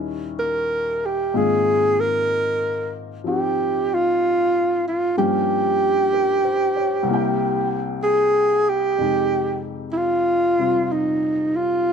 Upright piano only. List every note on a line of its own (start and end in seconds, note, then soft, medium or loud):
0.00 1.32 D#2 soft
0.00 1.32 D#3 soft
0.00 1.33 G3 soft
0.00 1.34 C#4 soft
0.00 1.34 E4 soft
1.34 5.17 G#2 soft
1.34 5.18 D#3 soft
1.34 5.16 A#3 soft
1.34 3.24 C4 soft
1.34 5.18 F4 soft
3.24 5.16 F3 soft
3.24 5.17 C4 soft
3.24 5.17 D#4 soft
3.24 5.17 G4 soft
5.17 7.08 G2 soft
5.17 7.08 F3 soft
5.17 7.07 A#3 soft
5.17 7.09 C#4 soft
5.17 7.09 G4 soft
6.13 6.73 A#4 soft
6.44 6.94 C5 soft
6.76 7.26 C#5 soft
7.03 8.96 C2 medium
7.03 8.98 C3 soft
7.09 8.99 A#3 soft
7.09 9.00 E4 soft
7.14 9.02 G5 medium
8.98 11.93 F2 soft
8.98 10.57 C3 soft
8.98 11.93 G#3 soft
8.98 11.93 D#4 soft
9.02 11.93 G4 soft
10.59 11.93 C3 soft
10.59 11.93 G3 soft
10.59 11.93 C4 soft
10.59 11.93 F4 soft